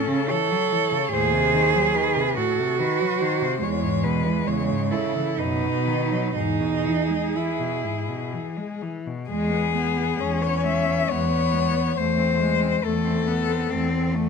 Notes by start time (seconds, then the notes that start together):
Already playing: C#4 A4
0.07 C#3
0.29 E3 A4 C#5
0.51 F#3
0.72 E3
0.92 C#3
1.11 D#2 A2 G#4 C5
1.33 C3
1.54 D#3
1.74 F#3
1.95 D#3 B4
2.16 C3
2.37 A2 F#4 A4
2.59 C3
2.79 D#3 B4
3.01 F#3
3.21 D#3 C5
3.42 C3
3.62 E2 G#3 C#5
3.83 G#2
4.04 B2 B4
4.26 E3
4.47 E2 C#3 C#5
4.69 G#2
4.91 C#3 E4 A4
5.16 E3
5.38 F#2 B2 D#4 B4
5.62 B2
5.86 D#3
6.10 F#3
6.35 E2 G#2 D#4 G#4
6.60 B2
6.85 E3
7.09 G#3
7.35 E3 E4
7.59 B2
7.84 G#2
8.09 B2
8.33 E3
8.57 G#3
8.82 E3
9.06 B2
9.29 E2 G#3 G#4
9.50 B3
9.74 G#3 B3
9.96 B3
10.19 E2 G#3 C#4
10.41 B3 C#5
10.64 G#3 E5
10.87 B3
11.08 E2 G#3 B3 C#5
11.30 B3
11.52 G#3
11.74 B3
11.96 E2 A3 C5
12.17 C4
12.39 G#3 A3
12.61 C4
12.83 E2 A3 A4
13.04 C4
13.25 A3 B3
13.47 C4
13.68 E2 A3 C4
13.90 C4
14.14 A3